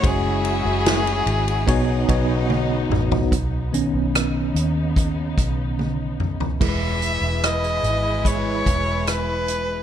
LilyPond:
<<
  \new Staff \with { instrumentName = "Violin" } { \time 4/4 \key e \major \tempo 4 = 73 gis'2. r4 | r1 | e''4 dis''4 cis''4 b'4 | }
  \new Staff \with { instrumentName = "Violin section" } { \time 4/4 \key e \major <e' e''>2 <dis' dis''>2 | r1 | <gis e' b'>1 | }
  \new Staff \with { instrumentName = "Tine electric piano" } { \time 4/4 \key e \major <gis cis' fis' c'' cis''>2 <b dis' fis' cis''>8 <b dis' fis' cis''>4. | r1 | <gis e' ais' b'>2 <gis e' b'>2 | }
  \new Staff \with { instrumentName = "Tine electric piano" } { \clef bass \time 4/4 \key e \major r2 b,4. r8 | r8 <dis b cis'>2.~ <dis b cis'>8 | e4. r2 r8 | }
  \new Staff \with { instrumentName = "String section" } { \time 4/4 \key e \major <cis gis fis'>2 <cis b dis'>2 | <cis b dis'>1 | <b, gis e'>1 | }
  \new Staff \with { instrumentName = "Fingered electric bass" } { \clef bass \time 4/4 \key e \major fis,,8. fis,,8. gis,,8 b,,8 b,,4 a,,8 | b,,8. b,,8. dis,4 b,,4. | e,,8. e,,8. gis,,4 e,,4. | }
  \new DrumStaff \with { instrumentName = "Drums" } \drummode { \time 4/4 <bd cymr>8 cymr8 <cymr sn>16 cymr16 cymr16 cymr16 <bd cymr>8 <bd cymr>8 tommh8 toml16 tomfh16 | <hh bd>8 hh8 <hh ss>8 hh8 <hh bd>8 <hh bd>8 tommh8 toml16 tomfh16 | <cymc bd>8 hh8 <hh ss>16 hh16 hh8 <hh bd>8 <hh bd>8 <hh ss>8 hh8 | }
>>